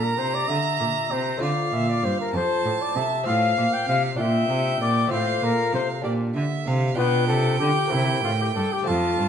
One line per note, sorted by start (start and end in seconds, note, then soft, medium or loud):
0.00 0.15 A#2 medium
0.00 0.18 A#2 medium
0.00 1.35 A#3 soft
0.00 1.36 D4 soft
0.00 1.37 G4 medium
0.00 0.20 A#4 medium
0.00 1.38 A#5 medium
0.18 0.46 C3 medium
0.18 0.48 C3 medium
0.18 0.36 C5 medium
0.34 0.50 D5 medium
0.48 0.77 D3 medium
0.48 0.57 D3 medium
0.48 1.13 E5 medium
0.80 1.08 A#2 medium
0.80 0.88 A#2 medium
1.11 1.41 C3 medium
1.11 1.39 C3 medium
1.11 1.44 C5 medium
1.37 1.69 A3 medium
1.37 3.22 F4 medium
1.41 1.49 D3 medium
1.41 1.69 D3 medium
1.41 1.75 D5 medium
1.41 2.33 F5 medium
1.72 2.02 A#2 medium
1.72 2.00 A#2 medium
1.72 1.89 E5 medium
1.89 2.06 D5 medium
2.03 2.31 G2 medium
2.03 2.11 G2 medium
2.03 2.20 C5 medium
2.20 2.35 A#4 medium
2.34 2.42 F2 medium
2.34 2.62 F2 medium
2.34 2.83 C5 loud
2.34 3.25 A5 medium
2.64 2.72 A2 medium
2.64 2.93 A2 medium
2.81 2.98 D5 medium
2.96 3.04 C3 medium
2.96 3.24 C3 medium
2.96 3.26 E5 loud
3.24 3.55 A2 medium
3.24 3.54 A2 medium
3.24 4.15 C4 medium
3.24 4.16 F4 medium
3.24 4.17 F5 medium
3.24 3.75 F5 loud
3.57 3.65 A#2 medium
3.57 3.85 A#2 medium
3.73 3.88 G5 loud
3.87 4.18 C3 medium
3.87 4.16 C3 medium
3.87 4.02 F5 loud
4.16 4.48 A#2 medium
4.16 4.47 A#2 medium
4.16 5.07 D4 medium
4.16 5.08 F4 medium
4.16 4.80 E5 loud
4.16 5.10 G5 medium
4.49 4.80 C3 medium
4.49 4.78 C3 medium
4.80 5.11 A#2 medium
4.80 5.09 A#2 medium
4.80 5.11 D5 loud
5.07 5.41 A2 medium
5.07 6.00 A3 medium
5.07 6.00 C4 medium
5.07 6.01 F4 medium
5.12 5.40 A2 medium
5.12 5.45 C5 medium
5.12 6.03 F5 medium
5.42 5.50 A#2 medium
5.42 5.70 A#2 medium
5.42 5.74 A#4 loud
5.73 5.81 C3 medium
5.73 6.02 C3 medium
5.73 5.88 C5 medium
6.02 6.35 A#2 medium
6.02 6.32 A#2 medium
6.02 6.93 D4 medium
6.02 6.94 G4 medium
6.02 6.12 D5 medium
6.35 6.43 D3 medium
6.35 6.64 D3 medium
6.35 6.68 E5 medium
6.66 6.97 C3 medium
6.66 6.95 C3 medium
6.66 6.96 F5 medium
6.95 7.30 B2 medium
6.95 7.26 B2 medium
6.95 7.88 D4 medium
6.95 7.88 F4 medium
6.95 7.27 B4 loud
6.95 8.83 G5 loud
7.28 7.60 C3 medium
7.28 7.57 C3 medium
7.28 7.59 A4 loud
7.60 7.68 D3 medium
7.60 7.89 D3 medium
7.60 7.92 G4 loud
7.87 8.23 C3 medium
7.87 8.82 A#3 medium
7.87 8.83 C4 medium
7.87 8.23 E4 medium
7.87 8.84 G4 medium
7.92 8.20 C3 medium
8.23 8.54 A2 medium
8.23 8.52 A2 medium
8.23 8.31 F4 medium
8.41 8.47 G4 medium
8.55 8.63 G2 medium
8.55 8.84 G2 medium
8.55 8.74 A4 medium
8.73 8.89 G4 medium
8.82 9.16 A3 medium
8.82 9.17 C4 medium
8.82 9.29 F4 medium
8.82 9.29 A5 medium
8.87 9.16 F2 medium
8.87 9.19 F2 medium
8.87 9.29 F4 medium
9.19 9.27 G2 medium
9.19 9.29 G2 medium